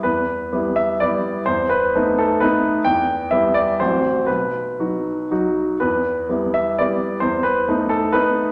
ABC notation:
X:1
M:3/4
L:1/8
Q:1/4=126
K:Em
V:1 name="Grand piano"
B3 e d2 | c B2 A B2 | g2 e d c2 | B4 z2 |
B3 e d2 | c B2 A B2 |]
V:2 name="Grand piano"
E,,2 [G,B,E]2 [G,B,E]2 | E,,2 [A,B,^D]2 [A,B,D]2 | E,,2 [G,B,E]2 [A,,,F,CF]2 | B,,,2 [F,^DF]2 [F,DF]2 |
E,,2 [G,B,E]2 [G,B,E]2 | E,,2 [A,B,^D]2 [A,B,D]2 |]